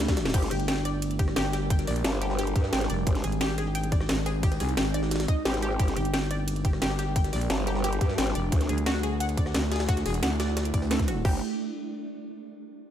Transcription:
Already playing: D2 A3 D4 E4, swell
0.08 kick, snare, closed hi-hat, ride
0.17 snare, closed hi-hat, ride
0.25 snare, ride
0.30 snare, ride
0.34 G1 G3 G4 A#4, kick, closed hi-hat, crash, ride
0.43 snare, closed hi-hat
0.51 G1 G4, cross-stick, closed hi-hat, ride
0.60 closed hi-hat
0.68 G5, snare, closed hi-hat, ride
0.77 snare
0.85 D5, cross-stick, closed hi-hat, ride
1.02 closed hi-hat, ride
1.11 closed hi-hat
1.19 G4, kick, closed hi-hat, ride
1.28 cross-stick, snare
1.36 G1 G4, snare, closed hi-hat, ride
1.45 cross-stick, snare
1.53 G4, snare, closed hi-hat, ride
1.70 G5, kick, closed hi-hat, ride
1.79 snare, closed hi-hat
1.87 A#1 D5, cross-stick, snare, closed hi-hat, open hi-hat
1.96 closed hi-hat
2.04 G1, snare, closed hi-hat, ride
2.22 G4, closed hi-hat, ride
2.30 snare
2.39 G4, closed hi-hat, ride
2.47 closed hi-hat, ride
2.56 G2 G4, kick, closed hi-hat, ride
2.64 snare
2.73 G#1 G5, snare, closed hi-hat, ride
2.81 snare, closed hi-hat
2.90 F1 D5, closed hi-hat, ride
3.07 G#1 G#3 C4 D#4, kick, closed hi-hat, ride
3.15 snare, closed hi-hat
3.24 G#1 G#4, cross-stick, closed hi-hat, ride
3.32 closed hi-hat
3.41 G4, snare, closed hi-hat, ride
3.49 snare
3.58 G#4, cross-stick, closed hi-hat, ride
3.75 G5, closed hi-hat, ride
3.83 closed hi-hat
3.92 D5, kick, closed hi-hat, ride
4.00 cross-stick, snare
4.09 G#1, snare, closed hi-hat, ride
4.18 cross-stick, snare
4.26 G#4, snare, closed hi-hat, ride
4.43 G4, kick, closed hi-hat, ride
4.52 snare, closed hi-hat
4.60 C2 G#4, cross-stick, snare, closed hi-hat, open hi-hat
4.69 closed hi-hat
4.77 G#1 G5, snare, closed hi-hat, ride
4.94 D5, cross-stick, closed hi-hat, ride
5.03 snare
5.11 snare, closed hi-hat, ride
5.16 snare, ride
5.20 snare, closed hi-hat, ride
5.28 D#5, kick, closed hi-hat, ride
5.45 G#1 G4, snare, closed hi-hat, ride
5.54 snare, closed hi-hat
5.62 G4, closed hi-hat, ride
5.79 G1 G3 D4 G4 A#4, kick, closed hi-hat, ride
5.88 snare, closed hi-hat
5.97 G1 G4, cross-stick, closed hi-hat, ride
6.05 closed hi-hat
6.14 G5, snare, closed hi-hat, ride
6.22 snare
6.31 D5, cross-stick, closed hi-hat, ride
6.48 closed hi-hat, ride
6.56 closed hi-hat
6.65 G4, kick, closed hi-hat, ride
6.73 cross-stick, snare
6.82 G1 G4, snare, closed hi-hat, ride
6.90 cross-stick, snare
6.99 G4, snare, closed hi-hat, ride
7.16 G5, kick, closed hi-hat, ride
7.24 snare, closed hi-hat
7.33 A#1 D5, cross-stick, snare, closed hi-hat, open hi-hat
7.41 closed hi-hat
7.50 G1, snare, closed hi-hat, ride
7.67 G4, closed hi-hat, ride
7.76 snare
7.84 G4, closed hi-hat, ride
7.93 closed hi-hat, ride
8.01 G2 G4, kick, closed hi-hat, ride
8.10 snare
8.18 G#1 G5, snare, closed hi-hat, ride
8.27 snare, closed hi-hat
8.35 F1 D5, closed hi-hat, ride
8.52 D2 A3 E4, kick, closed hi-hat, ride
8.61 snare, closed hi-hat
8.69 D2 G#4, cross-stick, closed hi-hat, ride
8.78 closed hi-hat
8.86 F#4, snare, closed hi-hat, ride
8.95 snare
9.03 G#4, cross-stick, closed hi-hat, ride
9.20 F#5, closed hi-hat, ride
9.29 closed hi-hat
9.37 D5, kick, closed hi-hat, ride
9.46 cross-stick, snare
9.54 D2, snare, closed hi-hat, ride
9.63 cross-stick, snare
9.72 G#4, snare, closed hi-hat, ride
9.76 snare, ride
9.80 snare, ride
9.89 F#4, kick, closed hi-hat, ride
9.97 snare, closed hi-hat
10.06 E1 G#4, cross-stick, snare, closed hi-hat, open hi-hat
10.14 closed hi-hat
10.23 D2 F#5, snare, closed hi-hat, ride
10.40 D5, cross-stick, snare, closed hi-hat, ride
10.48 snare
10.57 cross-stick, snare, closed hi-hat, ride
10.65 closed hi-hat, ride
10.74 D2 D5, kick, closed hi-hat, ride
10.82 snare
10.91 A4, snare, closed hi-hat, ride
10.99 kick, snare, closed hi-hat
11.08 F#4, cross-stick, closed hi-hat, ride
11.25 G1 G4, kick, crash

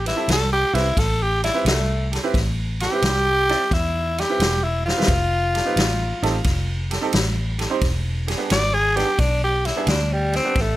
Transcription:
Already playing: A1
0.05 E4 G4 B4, snare, ride
0.16 C4 E4 G4 A4
0.28 C2 A4, snare, ride
0.53 G4
0.73 C2 C4 E4 G4 B4, snare, ride
0.97 A1 A4, kick, snare, ride
1.22 G4
1.43 E4 G4 D5, snare, ride
1.54 C4 E4 G4 B4
1.65 C2 A3, snare, ride
2.12 G4 A4, snare, ride
2.23 C4 E4 G4 B4
2.34 A1, kick, snare, ride
2.80 G4 A4, snare, ride
2.91 C4 E4 G4 B4
3.02 C2, snare, ride
3.49 C4 E4 G4 D5, snare, ride
3.71 E2 E4, kick, snare, ride
4.18 G4 D5, snare, ride
4.29 C4 E4 G4 B4
4.39 E1, snare, ride
4.64 E4
4.85 F4 G4 C5, snare
4.97 C4 E4 G4 B4
5.02 snare
5.08 F1, kick, ride
5.54 G4 A4, snare, ride
5.65 C4 D#4 G4 B4
5.76 A1, snare, ride
6.22 A1 C4 D#4 G4 A4, snare, ride
6.44 F1, kick, snare, ride
6.91 G4 A4, snare, ride
7.01 C4 D#4 G4 A4
7.13 A1, snare, ride
7.58 G4 A4, snare, ride
7.70 C4 D#4 G4 C5
7.81 E1, kick, snare, ride
8.27 G4 G#4, snare, ride
8.37 B3 D4 G4 G#4
8.50 G#1 D5, snare, ride
8.74 G#4
8.96 B3 D4 G4 G#4, snare, ride
9.19 B1 D4, kick, snare, ride
9.44 G4
9.64 E4 G4 G#4, snare, ride
9.76 B3 D4 G4 G#4
9.87 D2 D4, snare, ride
10.13 G3
10.33 C4 G4 G#4, snare, ride
10.44 B3 D4 G4 B4
10.55 A1, kick, snare, ride
10.61 A3

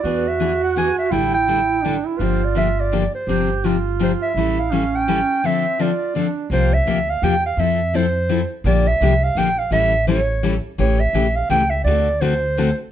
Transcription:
Already playing: D5
0.02 E2 E3 B3 D4 F#4 G#4
0.28 E5
0.40 E3 B3 D4 G#4
0.64 F#5
0.76 E3 B3 D4 G#4 G#5
0.99 E5
1.11 A1 D3 G3 D4 E4 A4 G5
1.34 G5
1.48 D3 G3 D4 E4 A4
1.83 D3 G3 D4 E4 A4
2.05 E4
2.17 G1 D3 F3 A#3 D4 F4 G4 B4
2.23 C5
2.45 D5
2.55 D3 F3 A#3 D4 G4 E5
2.80 D5
2.92 D3 F3 A#3 D4 G4
3.15 C5
3.27 G1 C3 F3 C4 D4 G4
3.64 C3 F3 C4 D4 F4 G4
3.99 C3 F3 C4 D4 G4 C5
4.23 E5
4.35 A1 E3 G3 C#4 E4 A4
4.59 F5
4.72 E3 G3 C#4 E4 A4
4.95 G5
5.08 E3 G3 C#4 E4 A4
5.44 D3 F3 C4 D4 A4 E5
5.79 D3 F3 C4 D4 F4 A4 D5
6.15 D3 F3 C4 D4 A4
6.50 C2 C3 F3 A#3 F4 G4 C5
6.74 E5
6.86 D2 C3 F3 A#3 F4 G4
7.10 F5
7.22 E2 C3 F3 A#3 F4 G4 G5
7.46 F5
7.57 F2 F3 C4 E4 A4 E5
7.94 F3 C4 E4 A4 C5
8.29 F3 C4 E4 A4
8.64 A#1 D3 F3 A#3 D4 G4 D5
8.87 E5
9.01 C2 D3 F3 A#3 D4 G4
9.24 F5
9.35 A#1 D3 F3 A#3 D4 G4 G5
9.59 F5
9.71 A1 E3 G3 C#4 E4 A4 E5
10.07 E3 G3 C#4 E4 A4 C#5
10.43 E3 G3 C#4 E4 A4
10.78 A1 C#3 E3 A3 C#4 G4 C#5
11.00 E5
11.13 A#1 C#3 E3 A3 C#4 G4
11.36 F5
11.49 C#2 C#3 E3 A3 C#4 G4 G5
11.70 E5
11.84 D2 D3 A3 C4 F#4 A4 D5
12.21 D3 A3 C4 F#4 A4 C5
12.57 D3 A3 C4 F#4 A4

